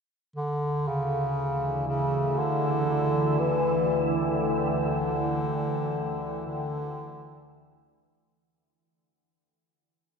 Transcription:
0, 0, Header, 1, 4, 480
1, 0, Start_track
1, 0, Tempo, 1016949
1, 181, Time_signature, 4, 2, 24, 8
1, 4813, End_track
2, 0, Start_track
2, 0, Title_t, "Ambient pad"
2, 0, Program_c, 0, 92
2, 174, Note_on_c, 0, 64, 74
2, 526, Note_on_c, 0, 74, 79
2, 849, Note_on_c, 0, 69, 68
2, 1385, Note_on_c, 0, 79, 82
2, 4016, Note_off_c, 0, 74, 0
2, 4017, Note_off_c, 0, 64, 0
2, 4018, Note_off_c, 0, 79, 0
2, 4020, Note_off_c, 0, 69, 0
2, 4813, End_track
3, 0, Start_track
3, 0, Title_t, "Bass clarinet"
3, 0, Program_c, 1, 71
3, 171, Note_on_c, 1, 50, 82
3, 415, Note_on_c, 1, 49, 76
3, 422, Note_off_c, 1, 50, 0
3, 884, Note_off_c, 1, 49, 0
3, 887, Note_on_c, 1, 49, 76
3, 1126, Note_on_c, 1, 50, 84
3, 1133, Note_off_c, 1, 49, 0
3, 1599, Note_on_c, 1, 52, 82
3, 1606, Note_off_c, 1, 50, 0
3, 1963, Note_off_c, 1, 52, 0
3, 2083, Note_on_c, 1, 50, 88
3, 3033, Note_off_c, 1, 50, 0
3, 3050, Note_on_c, 1, 50, 76
3, 3757, Note_off_c, 1, 50, 0
3, 4813, End_track
4, 0, Start_track
4, 0, Title_t, "Synth drone"
4, 0, Program_c, 2, 95
4, 177, Note_on_c, 2, 38, 69
4, 180, Note_on_c, 2, 52, 65
4, 4067, Note_off_c, 2, 38, 0
4, 4069, Note_off_c, 2, 52, 0
4, 4813, End_track
0, 0, End_of_file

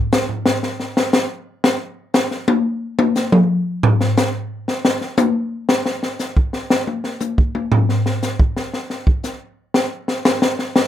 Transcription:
0, 0, Header, 1, 2, 480
1, 0, Start_track
1, 0, Tempo, 506329
1, 1557, Time_signature, 4, 2, 24, 8
1, 10309, End_track
2, 0, Start_track
2, 0, Title_t, "Drums"
2, 115, Note_on_c, 9, 44, 59
2, 120, Note_on_c, 9, 38, 87
2, 210, Note_off_c, 9, 44, 0
2, 215, Note_off_c, 9, 38, 0
2, 275, Note_on_c, 9, 43, 33
2, 370, Note_off_c, 9, 43, 0
2, 432, Note_on_c, 9, 38, 93
2, 527, Note_off_c, 9, 38, 0
2, 597, Note_on_c, 9, 38, 47
2, 692, Note_off_c, 9, 38, 0
2, 755, Note_on_c, 9, 38, 35
2, 850, Note_off_c, 9, 38, 0
2, 919, Note_on_c, 9, 38, 86
2, 1013, Note_off_c, 9, 38, 0
2, 1069, Note_on_c, 9, 44, 53
2, 1073, Note_on_c, 9, 38, 99
2, 1163, Note_off_c, 9, 44, 0
2, 1168, Note_off_c, 9, 38, 0
2, 1554, Note_on_c, 9, 38, 86
2, 1649, Note_off_c, 9, 38, 0
2, 2026, Note_on_c, 9, 44, 54
2, 2031, Note_on_c, 9, 38, 90
2, 2121, Note_off_c, 9, 44, 0
2, 2126, Note_off_c, 9, 38, 0
2, 2191, Note_on_c, 9, 38, 38
2, 2286, Note_off_c, 9, 38, 0
2, 2350, Note_on_c, 9, 48, 96
2, 2444, Note_off_c, 9, 48, 0
2, 2831, Note_on_c, 9, 48, 96
2, 2926, Note_off_c, 9, 48, 0
2, 2990, Note_on_c, 9, 44, 60
2, 2995, Note_on_c, 9, 38, 54
2, 3085, Note_off_c, 9, 44, 0
2, 3090, Note_off_c, 9, 38, 0
2, 3150, Note_on_c, 9, 47, 91
2, 3245, Note_off_c, 9, 47, 0
2, 3634, Note_on_c, 9, 43, 99
2, 3729, Note_off_c, 9, 43, 0
2, 3798, Note_on_c, 9, 38, 54
2, 3893, Note_off_c, 9, 38, 0
2, 3954, Note_on_c, 9, 44, 60
2, 3959, Note_on_c, 9, 38, 93
2, 4049, Note_off_c, 9, 44, 0
2, 4053, Note_off_c, 9, 38, 0
2, 4437, Note_on_c, 9, 38, 54
2, 4532, Note_off_c, 9, 38, 0
2, 4595, Note_on_c, 9, 38, 91
2, 4689, Note_off_c, 9, 38, 0
2, 4752, Note_on_c, 9, 38, 35
2, 4846, Note_off_c, 9, 38, 0
2, 4903, Note_on_c, 9, 44, 56
2, 4908, Note_on_c, 9, 48, 98
2, 4998, Note_off_c, 9, 44, 0
2, 5003, Note_off_c, 9, 48, 0
2, 5391, Note_on_c, 9, 38, 97
2, 5486, Note_off_c, 9, 38, 0
2, 5551, Note_on_c, 9, 38, 55
2, 5646, Note_off_c, 9, 38, 0
2, 5714, Note_on_c, 9, 38, 47
2, 5809, Note_off_c, 9, 38, 0
2, 5869, Note_on_c, 9, 44, 56
2, 5874, Note_on_c, 9, 38, 41
2, 5964, Note_off_c, 9, 44, 0
2, 5969, Note_off_c, 9, 38, 0
2, 6035, Note_on_c, 9, 36, 72
2, 6129, Note_off_c, 9, 36, 0
2, 6192, Note_on_c, 9, 38, 42
2, 6287, Note_off_c, 9, 38, 0
2, 6355, Note_on_c, 9, 38, 92
2, 6450, Note_off_c, 9, 38, 0
2, 6516, Note_on_c, 9, 48, 41
2, 6611, Note_off_c, 9, 48, 0
2, 6673, Note_on_c, 9, 38, 38
2, 6768, Note_off_c, 9, 38, 0
2, 6828, Note_on_c, 9, 44, 58
2, 6832, Note_on_c, 9, 48, 41
2, 6922, Note_off_c, 9, 44, 0
2, 6927, Note_off_c, 9, 48, 0
2, 6997, Note_on_c, 9, 36, 69
2, 7092, Note_off_c, 9, 36, 0
2, 7156, Note_on_c, 9, 48, 42
2, 7251, Note_off_c, 9, 48, 0
2, 7314, Note_on_c, 9, 43, 92
2, 7409, Note_off_c, 9, 43, 0
2, 7481, Note_on_c, 9, 38, 38
2, 7575, Note_off_c, 9, 38, 0
2, 7639, Note_on_c, 9, 38, 47
2, 7734, Note_off_c, 9, 38, 0
2, 7795, Note_on_c, 9, 44, 56
2, 7800, Note_on_c, 9, 38, 47
2, 7890, Note_off_c, 9, 44, 0
2, 7894, Note_off_c, 9, 38, 0
2, 7958, Note_on_c, 9, 36, 77
2, 8053, Note_off_c, 9, 36, 0
2, 8120, Note_on_c, 9, 38, 47
2, 8215, Note_off_c, 9, 38, 0
2, 8281, Note_on_c, 9, 38, 40
2, 8375, Note_off_c, 9, 38, 0
2, 8437, Note_on_c, 9, 38, 34
2, 8532, Note_off_c, 9, 38, 0
2, 8597, Note_on_c, 9, 36, 71
2, 8692, Note_off_c, 9, 36, 0
2, 8754, Note_on_c, 9, 44, 59
2, 8759, Note_on_c, 9, 38, 38
2, 8849, Note_off_c, 9, 44, 0
2, 8853, Note_off_c, 9, 38, 0
2, 9236, Note_on_c, 9, 38, 87
2, 9331, Note_off_c, 9, 38, 0
2, 9557, Note_on_c, 9, 38, 56
2, 9652, Note_off_c, 9, 38, 0
2, 9715, Note_on_c, 9, 44, 53
2, 9720, Note_on_c, 9, 38, 96
2, 9810, Note_off_c, 9, 44, 0
2, 9815, Note_off_c, 9, 38, 0
2, 9878, Note_on_c, 9, 38, 91
2, 9972, Note_off_c, 9, 38, 0
2, 10039, Note_on_c, 9, 38, 47
2, 10134, Note_off_c, 9, 38, 0
2, 10197, Note_on_c, 9, 38, 100
2, 10292, Note_off_c, 9, 38, 0
2, 10309, End_track
0, 0, End_of_file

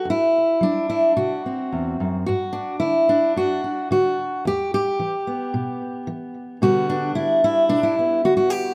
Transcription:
0, 0, Header, 1, 2, 480
1, 0, Start_track
1, 0, Key_signature, 1, "major"
1, 0, Tempo, 550964
1, 41, Time_signature, 4, 2, 24, 8
1, 3401, Tempo, 542495
1, 7680, End_track
2, 0, Start_track
2, 0, Title_t, "Steel-string acoustic guitar"
2, 0, Program_c, 0, 25
2, 46, Note_on_c, 0, 42, 72
2, 87, Note_on_c, 0, 64, 102
2, 474, Note_off_c, 0, 42, 0
2, 529, Note_on_c, 0, 54, 60
2, 549, Note_on_c, 0, 62, 85
2, 769, Note_off_c, 0, 64, 0
2, 780, Note_on_c, 0, 64, 80
2, 954, Note_off_c, 0, 54, 0
2, 1008, Note_off_c, 0, 64, 0
2, 1015, Note_on_c, 0, 48, 64
2, 1016, Note_on_c, 0, 66, 80
2, 1253, Note_off_c, 0, 62, 0
2, 1272, Note_on_c, 0, 60, 44
2, 1440, Note_off_c, 0, 48, 0
2, 1502, Note_on_c, 0, 40, 62
2, 1732, Note_off_c, 0, 40, 0
2, 1744, Note_on_c, 0, 42, 60
2, 1949, Note_off_c, 0, 60, 0
2, 1962, Note_off_c, 0, 66, 0
2, 1972, Note_off_c, 0, 42, 0
2, 1973, Note_on_c, 0, 66, 95
2, 1992, Note_on_c, 0, 43, 73
2, 2201, Note_on_c, 0, 62, 79
2, 2408, Note_off_c, 0, 43, 0
2, 2433, Note_off_c, 0, 66, 0
2, 2436, Note_on_c, 0, 64, 85
2, 2456, Note_on_c, 0, 50, 62
2, 2681, Note_off_c, 0, 62, 0
2, 2693, Note_on_c, 0, 62, 88
2, 2882, Note_off_c, 0, 50, 0
2, 2920, Note_off_c, 0, 64, 0
2, 2931, Note_on_c, 0, 43, 69
2, 2939, Note_on_c, 0, 66, 101
2, 3161, Note_off_c, 0, 62, 0
2, 3171, Note_on_c, 0, 62, 45
2, 3358, Note_off_c, 0, 43, 0
2, 3403, Note_off_c, 0, 66, 0
2, 3404, Note_on_c, 0, 50, 58
2, 3413, Note_on_c, 0, 66, 91
2, 3837, Note_off_c, 0, 50, 0
2, 3859, Note_off_c, 0, 62, 0
2, 3886, Note_on_c, 0, 40, 73
2, 3890, Note_off_c, 0, 66, 0
2, 3905, Note_on_c, 0, 67, 110
2, 4131, Note_off_c, 0, 67, 0
2, 4142, Note_on_c, 0, 67, 104
2, 4319, Note_off_c, 0, 40, 0
2, 4366, Note_on_c, 0, 52, 59
2, 4612, Note_on_c, 0, 59, 48
2, 4796, Note_off_c, 0, 52, 0
2, 4847, Note_on_c, 0, 47, 66
2, 5277, Note_off_c, 0, 47, 0
2, 5319, Note_on_c, 0, 52, 65
2, 5332, Note_off_c, 0, 67, 0
2, 5752, Note_off_c, 0, 52, 0
2, 5803, Note_on_c, 0, 47, 75
2, 5806, Note_on_c, 0, 50, 55
2, 5810, Note_on_c, 0, 55, 51
2, 5811, Note_on_c, 0, 66, 100
2, 5814, Note_off_c, 0, 59, 0
2, 5817, Note_on_c, 0, 59, 50
2, 6044, Note_off_c, 0, 59, 0
2, 6048, Note_on_c, 0, 62, 90
2, 6231, Note_off_c, 0, 47, 0
2, 6269, Note_off_c, 0, 50, 0
2, 6272, Note_off_c, 0, 66, 0
2, 6275, Note_on_c, 0, 64, 90
2, 6280, Note_on_c, 0, 50, 58
2, 6515, Note_off_c, 0, 64, 0
2, 6531, Note_on_c, 0, 64, 92
2, 6708, Note_off_c, 0, 50, 0
2, 6745, Note_off_c, 0, 62, 0
2, 6752, Note_on_c, 0, 47, 75
2, 6755, Note_on_c, 0, 62, 109
2, 6866, Note_off_c, 0, 64, 0
2, 6877, Note_on_c, 0, 64, 84
2, 6995, Note_off_c, 0, 62, 0
2, 7016, Note_on_c, 0, 59, 48
2, 7186, Note_off_c, 0, 47, 0
2, 7237, Note_off_c, 0, 64, 0
2, 7246, Note_on_c, 0, 66, 100
2, 7250, Note_on_c, 0, 50, 65
2, 7340, Note_off_c, 0, 66, 0
2, 7351, Note_on_c, 0, 66, 98
2, 7469, Note_off_c, 0, 66, 0
2, 7469, Note_on_c, 0, 67, 111
2, 7678, Note_off_c, 0, 50, 0
2, 7680, Note_off_c, 0, 55, 0
2, 7680, Note_off_c, 0, 59, 0
2, 7680, Note_off_c, 0, 67, 0
2, 7680, End_track
0, 0, End_of_file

